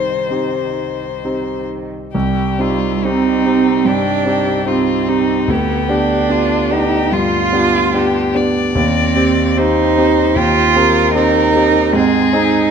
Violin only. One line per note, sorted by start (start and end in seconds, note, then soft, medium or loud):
0.00 1.65 C5 medium
2.14 2.62 G4 medium
2.61 3.06 F4 medium
3.04 3.87 D#4 medium
3.86 4.27 G4 medium
4.27 4.69 G4 soft
4.67 5.11 F4 soft
5.09 5.52 D#4 soft
5.50 6.33 G4 soft
6.31 6.72 F4 medium
6.71 7.14 G4 medium
7.13 7.93 F4 medium
7.94 8.37 G4 medium
8.36 9.59 D5 medium
9.58 10.38 C5 medium
10.37 10.78 G4 medium
10.76 11.96 A#4 medium
11.95 12.71 G#4 medium